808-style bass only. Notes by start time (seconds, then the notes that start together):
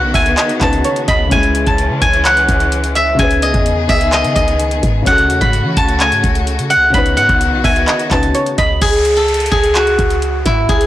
0.02 B1
0.14 C#2
0.61 C#2
1.08 C#2
1.31 C#2
1.67 C#2
1.90 C#3
2.02 C#2
2.49 C#2
3.19 C#2
3.54 E2
3.89 C#2
4.24 C#3
4.36 C#2
4.83 G#2
5.06 C#2
5.30 E2
5.42 G#2
5.65 E3
5.77 C#2
6.12 G#2
6.24 C#2
6.59 C#3
6.76 C#2
6.94 C#2
7.17 G#2
7.29 C#2
7.53 B1
7.64 C#2
8.11 C#2
8.58 C#2
8.81 C#2
9.52 C#2
9.99 C#2
10.46 G#2
10.69 C#2